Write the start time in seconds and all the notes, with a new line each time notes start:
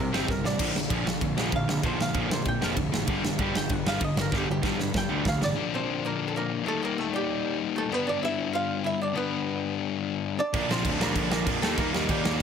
Already playing: C3
0.00 G3 A#4
0.12 G1 C3 G3 C4 G4, snare
0.28 G1 C3 G3 A#4, kick, snare
0.43 A1 C3 G3 D5, snare
0.58 A#1 A#2 D3 F3, kick, ride, crash
0.74 A#1 A#2 D3, snare
0.90 A#1 A#2 D3 F3, kick, ride
1.06 A#1 A#2 D3, snare
1.21 A#1 A#2 D3, kick, ride
1.37 A#1 A#2 D3 F3, snare
1.52 A#1 A#2 D3 F5, kick, ride
1.68 A#1 A#2 D3, snare
1.83 A#1 A#2 D3 F3 C5, kick, ride
1.99 A#1 A#2 D3 F5, snare
2.14 A#1 A#2 D3 F3, kick, ride
2.30 A#2 D3 C5, snare
2.45 A#2 D3 G5, kick, ride
2.61 F1 A#2 D3 F3 F5, snare
2.77 F1 A#2 D3, kick, ride
2.92 A1 A#2 D3, snare
3.07 G1 G2 D3 G3, kick, ride
3.23 G1 G2 D3, snare
3.39 G1 G2 D3 G3, kick, ride
3.55 G1 G2 D3 G5, snare
3.69 G1 G2 D3 F#5, kick, ride
3.86 G1 G2 D3 G3 F5, snare
4.01 G1 G2 D3 D#5, kick, ride
4.16 G1 G2 D3, snare
4.21 A#4
4.32 G1 G2 D3 G3, kick, snare
4.37 G4
4.48 G1 G2 D3 G4
4.63 G1 G2 D3 G3, kick, snare
4.79 G2 D3, snare
4.94 G2 D3 G5, kick, snare
5.09 D2 G2 D3 G3
5.25 D2 G2 D3 F5, kick, snare
5.41 A1 G2 D3 D4 D5, snare
5.55 A#2 D3 F3 A#3 D4
5.74 C4 C5
6.05 A#3 A#4
6.28 A4
6.36 A#3 A#4
6.64 D#3 G3 A3 A#3 D#4
6.68 A4
6.83 A#3 A#4
6.98 A3 A4
7.13 G3 G4
7.76 A3 A4
7.89 G2 D3 G3 B3 D4
7.94 B4
8.07 D4 D5
8.23 E4 E5
8.53 F4 F5
8.84 E4 E5
9.01 D4 D5
9.14 G2 D3 G3 B3 D4 B4
10.39 D4 D5
10.53 A#1 A#2 D3 F3 A#3 D4, kick, crash
10.70 A#1 C4 C5, snare
10.85 D2, kick, crash
10.99 A#2 D3 F3 A#3 D4 A#4, snare
11.16 A#1, kick, crash
11.32 A#1 A#3 A#4, snare
11.46 F2 A#2 D3 F3 A#3 D4, kick, crash
11.62 D#2 D#3 G3 A3 A#3 D#4 A4, snare
11.78 D#2 A#3 A#4, kick, crash
11.93 D#2, snare
12.09 D#2 D#3 G3 A#3 D#4 G4, kick, crash
12.25 D#2, snare